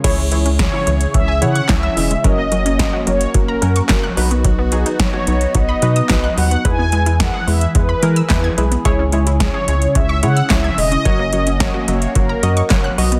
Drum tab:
CC |x---------------|----------------|----------------|----------------|
HH |x-xxx-xxx-xxx-ox|x-xxx-xxx-xxx-ox|x-xxx-xxx-xxx-ox|x-xxx-oxx-xxx-xx|
CP |------------x---|------------x---|------------x---|------------x---|
SD |----o-------o---|----o-------o---|----o-------o---|----o-------o---|
BD |o---o---o---o---|o---o---o---o---|o---o---o---o---|o---o---o---o---|

CC |----------------|----------------|
HH |x-xxx-xxx-xxx-ox|x-xxx-xxx-xxx-ox|
CP |------------x---|------------x---|
SD |----o-------o---|----o-------o---|
BD |o---o---o---o---|o---o---o---o---|